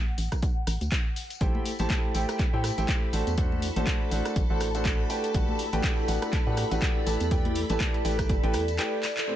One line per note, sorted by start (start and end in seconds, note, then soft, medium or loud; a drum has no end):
0.00 1.41 F#5 medium
0.18 0.29 A1 medium
0.18 open hi-hat loud
0.18 tambourine medium
0.32 kick medium
0.32 cross-stick medium
0.32 closed hi-hat soft
0.32 tambourine medium
0.42 kick loud
0.42 closed hi-hat medium
0.42 tambourine soft
0.67 0.78 A1 loud
0.67 cross-stick medium
0.67 open hi-hat loud
0.67 tambourine medium
0.81 0.89 D2 medium
0.81 closed hi-hat soft
0.81 tambourine soft
0.92 kick loud
0.92 clap loud
0.92 closed hi-hat medium
0.92 tambourine soft
1.16 open hi-hat loud
1.16 tambourine medium
1.30 closed hi-hat medium
1.30 tambourine soft
1.41 1.51 A1 loud
1.41 1.68 A3 medium
1.41 1.68 E4 medium
1.41 1.68 G4 medium
1.41 9.27 A4 medium
1.41 1.68 A4 medium
1.41 1.68 C5 medium
1.41 1.68 G5 medium
1.41 9.27 B5 medium
1.41 kick loud
1.41 closed hi-hat medium
1.41 tambourine soft
1.55 3.13 G5 medium
1.55 high conga medium
1.66 open hi-hat loud
1.66 tambourine medium
1.79 1.87 A1 loud
1.79 2.12 A3 medium
1.79 2.12 E4 medium
1.79 2.12 G4 medium
1.79 2.12 A4 medium
1.79 2.12 C5 medium
1.79 2.12 A5 medium
1.79 closed hi-hat soft
1.79 tambourine soft
1.79 high conga medium
1.90 kick loud
1.90 clap loud
1.90 closed hi-hat medium
1.90 tambourine soft
2.14 2.25 A1 medium
2.14 2.42 A3 medium
2.14 2.42 E4 medium
2.14 2.42 G4 medium
2.14 2.42 A4 medium
2.14 2.42 C5 medium
2.14 2.42 G5 medium
2.14 open hi-hat loud
2.14 tambourine medium
2.29 cross-stick medium
2.29 closed hi-hat medium
2.29 tambourine medium
2.39 kick loud
2.39 clap medium
2.39 closed hi-hat medium
2.39 tambourine soft
2.53 2.71 A2 loud
2.53 2.69 A3 medium
2.53 2.69 E4 medium
2.53 2.69 G4 medium
2.53 2.69 A4 medium
2.53 2.69 C5 medium
2.53 2.69 G5 medium
2.64 cross-stick medium
2.64 open hi-hat loud
2.64 tambourine medium
2.78 2.86 A1 medium
2.78 3.10 A3 medium
2.78 3.10 E4 medium
2.78 3.10 G4 medium
2.78 3.10 A4 medium
2.78 3.10 C5 medium
2.78 3.10 G5 medium
2.78 closed hi-hat soft
2.78 tambourine soft
2.88 kick loud
2.88 clap loud
2.88 closed hi-hat medium
2.88 tambourine soft
3.13 3.24 A1 medium
3.13 3.31 A3 medium
3.13 3.31 D4 medium
3.13 9.36 E4 medium
3.13 3.31 F#4 medium
3.13 3.31 A4 medium
3.13 3.31 C5 medium
3.13 3.31 A5 medium
3.13 open hi-hat loud
3.13 tambourine medium
3.27 3.71 E2 medium
3.27 closed hi-hat medium
3.27 tambourine soft
3.37 3.65 A3 medium
3.37 3.65 D4 medium
3.37 3.65 F#4 medium
3.37 3.65 A4 medium
3.37 3.65 C5 medium
3.37 3.65 F#5 medium
3.37 kick loud
3.37 closed hi-hat medium
3.37 tambourine soft
3.51 9.28 A5 medium
3.51 high conga medium
3.62 open hi-hat loud
3.62 tambourine medium
3.76 3.84 A1 loud
3.76 4.09 A3 medium
3.76 4.09 D4 medium
3.76 4.09 F#4 medium
3.76 4.09 A4 medium
3.76 4.09 C5 medium
3.76 4.09 A5 medium
3.76 closed hi-hat medium
3.76 tambourine soft
3.76 high conga medium
3.87 kick loud
3.87 clap loud
3.87 closed hi-hat medium
3.87 tambourine soft
4.11 4.22 A1 medium
4.11 4.39 A3 medium
4.11 4.39 D4 medium
4.11 4.39 F#4 medium
4.11 4.39 A4 medium
4.11 4.39 C5 medium
4.11 4.39 F#5 medium
4.11 open hi-hat loud
4.11 tambourine medium
4.25 cross-stick medium
4.25 closed hi-hat medium
4.25 tambourine medium
4.36 4.47 A1 loud
4.36 kick loud
4.36 closed hi-hat medium
4.36 tambourine soft
4.50 5.06 A1 loud
4.50 4.66 A3 medium
4.50 4.66 D4 medium
4.50 4.66 F#4 medium
4.50 4.66 A4 medium
4.50 4.66 C5 medium
4.50 4.66 F#5 medium
4.60 cross-stick medium
4.60 open hi-hat loud
4.60 tambourine loud
4.75 5.07 A3 medium
4.75 5.07 D4 medium
4.75 5.07 F#4 medium
4.75 5.07 A4 medium
4.75 5.07 C5 medium
4.75 5.07 F#5 medium
4.75 closed hi-hat medium
4.75 tambourine medium
4.85 kick loud
4.85 clap loud
4.85 closed hi-hat medium
4.85 tambourine soft
5.10 5.28 A3 medium
5.10 5.28 D4 medium
5.10 5.28 F#4 medium
5.10 5.28 G4 medium
5.10 5.28 B4 medium
5.10 5.28 G5 medium
5.10 open hi-hat loud
5.10 tambourine medium
5.19 9.36 A4 medium
5.24 closed hi-hat medium
5.24 tambourine soft
5.34 5.45 A1 loud
5.34 5.62 A3 medium
5.34 5.62 D4 medium
5.34 5.62 F#4 medium
5.34 5.62 G4 medium
5.34 5.62 B4 medium
5.34 5.62 F#5 medium
5.34 kick loud
5.34 closed hi-hat medium
5.34 tambourine soft
5.48 high conga medium
5.53 9.36 D5 medium
5.59 open hi-hat loud
5.59 tambourine medium
5.73 5.81 A1 loud
5.73 6.06 A3 medium
5.73 6.06 D4 medium
5.73 6.06 F#4 medium
5.73 6.06 G4 medium
5.73 6.06 B4 medium
5.73 6.06 G5 medium
5.73 closed hi-hat medium
5.73 tambourine soft
5.73 high conga medium
5.84 kick loud
5.84 clap loud
5.84 closed hi-hat medium
5.84 tambourine soft
6.08 6.19 A1 medium
6.08 6.35 A3 medium
6.08 6.35 D4 medium
6.08 6.35 F#4 medium
6.08 6.35 G4 medium
6.08 6.35 B4 medium
6.08 6.35 F#5 medium
6.08 open hi-hat loud
6.08 tambourine medium
6.22 cross-stick medium
6.22 closed hi-hat medium
6.22 tambourine medium
6.33 kick loud
6.33 clap medium
6.33 closed hi-hat medium
6.33 tambourine soft
6.47 6.64 A2 loud
6.47 6.63 A3 medium
6.47 6.63 D4 medium
6.47 6.63 F#4 medium
6.47 6.63 G4 medium
6.47 6.63 B4 medium
6.47 6.63 F#5 medium
6.57 cross-stick medium
6.57 open hi-hat loud
6.57 tambourine medium
6.71 6.79 A1 loud
6.71 7.04 A3 medium
6.71 7.04 D4 medium
6.71 7.04 F#4 medium
6.71 7.04 G4 medium
6.71 7.04 B4 medium
6.71 7.04 F#5 medium
6.71 closed hi-hat medium
6.71 tambourine soft
6.82 kick loud
6.82 clap loud
6.82 closed hi-hat medium
6.82 tambourine soft
7.06 7.17 A1 medium
7.06 7.24 A3 medium
7.06 7.24 E4 medium
7.06 7.24 G4 medium
7.06 7.24 B4 medium
7.06 7.24 D5 medium
7.06 7.24 A5 medium
7.06 open hi-hat loud
7.06 tambourine medium
7.20 7.64 E2 medium
7.20 closed hi-hat medium
7.20 tambourine medium
7.31 7.58 A3 medium
7.31 7.58 E4 medium
7.31 7.58 G4 medium
7.31 7.58 B4 medium
7.31 7.58 D5 medium
7.31 7.58 G5 medium
7.31 kick loud
7.31 closed hi-hat medium
7.31 tambourine soft
7.45 closed hi-hat soft
7.45 high conga medium
7.55 open hi-hat loud
7.55 tambourine medium
7.69 7.78 A1 loud
7.69 8.02 A3 medium
7.69 8.02 E4 medium
7.69 8.02 G4 medium
7.69 8.02 B4 medium
7.69 8.02 D5 medium
7.69 8.02 A5 medium
7.69 closed hi-hat medium
7.69 tambourine medium
7.69 high conga medium
7.80 kick loud
7.80 clap loud
7.80 closed hi-hat medium
7.80 tambourine soft
7.94 closed hi-hat soft
8.05 8.31 A1 medium
8.05 8.32 A3 medium
8.05 8.32 E4 medium
8.05 8.32 G4 medium
8.05 8.32 B4 medium
8.05 8.32 D5 medium
8.05 8.32 G5 medium
8.05 open hi-hat loud
8.05 tambourine medium
8.19 kick medium
8.19 cross-stick medium
8.19 closed hi-hat medium
8.19 tambourine medium
8.29 8.40 G1 loud
8.29 kick loud
8.29 closed hi-hat medium
8.29 tambourine soft
8.43 8.56 A1 loud
8.43 8.59 A3 medium
8.43 8.59 E4 medium
8.43 8.59 G4 medium
8.43 8.59 B4 medium
8.43 8.59 D5 medium
8.43 8.59 G5 loud
8.43 closed hi-hat soft
8.53 8.79 E2 loud
8.53 cross-stick medium
8.53 open hi-hat loud
8.53 tambourine medium
8.68 closed hi-hat medium
8.68 tambourine medium
8.79 8.97 A3 loud
8.79 8.97 E4 medium
8.79 8.97 G4 medium
8.79 8.97 B4 medium
8.79 8.97 D5 medium
8.79 8.97 G5 loud
8.79 clap loud
8.79 closed hi-hat medium
8.79 tambourine soft
9.03 clap medium
9.03 open hi-hat loud
9.03 tambourine medium
9.17 clap loud
9.17 closed hi-hat medium
9.17 tambourine medium
9.28 9.36 A2 medium
9.28 9.36 A3 medium
9.28 9.36 C4 medium
9.28 9.36 E4 medium
9.28 9.36 G4 medium
9.28 9.36 A4 medium
9.28 9.36 C5 medium
9.28 9.36 B5 medium